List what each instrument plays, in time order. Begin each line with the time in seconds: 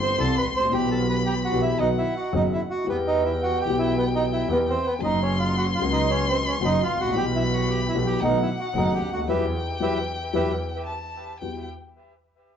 Already playing: grand piano G1 G2 E3 G3 C4 G4, double bass G1, violin C6
0.01 bandoneon C5 C6
0.18 grand piano C2 C3 E3 G3 C4 G4, double bass C2, bandoneon A4 A5
0.38 bandoneon B4 B5
0.46 double bass A1
0.51 grand piano G#1
0.56 grand piano A1, bandoneon C5 C6
0.65 grand piano A#1
0.69 double bass B1, grand piano B1 B2 E3 G3 B3, violin B5
0.73 grand piano G4, bandoneon G4 G5
0.91 bandoneon A4 A5
1.09 bandoneon B4 B5
1.26 bandoneon G4 G5
1.45 bandoneon F#4 F#5
1.52 double bass B1, grand piano B1 B2 E3 G3 B3 G4
1.62 bandoneon E4 E5
1.79 double bass B1, grand piano B1 B2 D#3 F#3 B3 F#4, bandoneon D#4 D#5, violin F#5
1.98 bandoneon E4 E5
2.16 bandoneon F#4 F#5
2.32 double bass F#1, grand piano F#1 F#2 D#3 F#3 B3 F#4, bandoneon D#4 D#5
2.53 bandoneon E4 E5
2.70 bandoneon F#4 F#5
2.84 grand piano E2 E3 G3 B3 G4, double bass E2, violin G5
2.89 bandoneon B3 B4
3.07 bandoneon D#4 D#5
3.25 bandoneon E4 E5
3.43 bandoneon F#4 F#5
3.61 bandoneon G4 G5
3.66 grand piano B1 B2 E3 G3 B3 G4, double bass B1
3.79 bandoneon E4 E5
3.98 bandoneon B3 B4
4.15 bandoneon D#4 D#5
4.33 bandoneon E4 E5
4.48 double bass E2, grand piano E2 E3 G3 B3 G4, bandoneon B4
4.52 bandoneon B3
4.69 bandoneon C4 C5
4.87 bandoneon B3 B4
4.99 double bass F#1, grand piano F#2 C#3 F#3 A#3 F#4, violin C6
5.04 bandoneon D#4 D#5
5.22 bandoneon C#4 C#5
5.40 bandoneon F4 F5
5.57 bandoneon F#4 F#5
5.75 bandoneon F4 F5
5.80 grand piano C#2 C#3 F#3 A#3 F#4, double bass C#2
5.93 bandoneon D#4 D#5
6.10 bandoneon C#4 C#5
6.29 bandoneon C4 C5
6.48 bandoneon C#4 C#5
6.61 double bass F#1, grand piano F#2 C#3 F#3 A#3 F#4
6.65 bandoneon D#4 D#5
6.83 bandoneon F4 F5
6.88 double bass A1
6.95 grand piano G#1
7.00 grand piano A1, bandoneon F#4 F#5
7.08 grand piano A#1
7.13 double bass B1, grand piano B1 B2 E3 G3 B3 G4, violin B5
7.17 bandoneon G4 G5
7.35 bandoneon E4 E5
7.53 bandoneon F#4 F#5
7.70 bandoneon G4 G5
7.88 bandoneon E4 E5
7.94 double bass B1, grand piano B1 B2 E3 G3 B3 G4
8.06 bandoneon G4 G5
8.20 double bass B1, grand piano B1 B2 D#3 A3 B3 F#4, bandoneon D#4, violin F#5
8.24 bandoneon D#5
8.42 bandoneon E4 E5
8.60 bandoneon F#4 F#5
8.74 double bass F#1, grand piano F#1 F#2 D#3 A3 B3 F#4, bandoneon D#4 D#5
8.94 bandoneon G4 G5
9.01 double bass D2
9.08 grand piano C#2
9.13 grand piano D2, bandoneon F#4 F#5
9.21 grand piano D#2
9.28 double bass E2, grand piano E3 F#3 G3, bandoneon G4 B4 E5, violin G5
9.80 double bass E2, grand piano E3 F#3 G3, bandoneon G4 B4 E5
10.33 double bass E2, grand piano E3 F#3 G3, bandoneon G4 B4 E5
10.87 violin A5
11.41 double bass E2, grand piano E2 G3 E4 F#4, violin G5